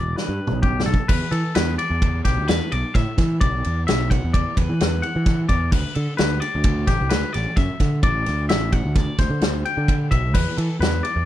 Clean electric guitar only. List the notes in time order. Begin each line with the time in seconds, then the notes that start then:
Already playing: D5
0.16 B4
0.62 G4
0.86 A4
1.08 B4
1.31 A4
1.55 B4
1.78 D5
2.25 G4
2.48 B4
2.72 D5
2.94 E5
3.41 D5
3.87 E5
4.10 F#5
4.34 D5
4.57 B4
5.02 F#5
5.49 D5
5.71 B4
5.95 A4
6.17 B4
6.40 D5
6.87 G4
7.09 B4
7.33 D5
7.56 E5
8.03 D5
8.49 E5
8.72 F#5
8.96 D5
9.19 C5
9.65 G5
10.11 E5
10.34 B4
10.57 A4
10.81 B4
11.03 D5